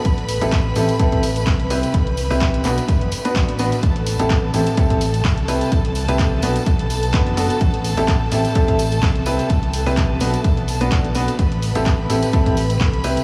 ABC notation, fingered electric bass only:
X:1
M:4/4
L:1/16
Q:"Swing 16ths" 1/4=127
K:Ador
V:1 name="Fingered electric bass" clef=bass
A,,,3 A,,,3 A,,, z2 A,,,3 C,,3 z | C,,3 C,,3 B,,, z2 F,,, z2 A,,,3 z | A,,,3 A,,,3 A,,, z2 A,,,3 C,,3 z | C,,3 C,,3 B,,, z2 B,,,3 F,,,3 z |
A,,,3 A,,,3 A,,, z2 A,,,3 C,,3 z | C,,3 C,,3 B,,, z2 B,,,3 B,,,3 z | A,,,3 A,,,3 A,,, z2 A,,,3 C,,3 z |]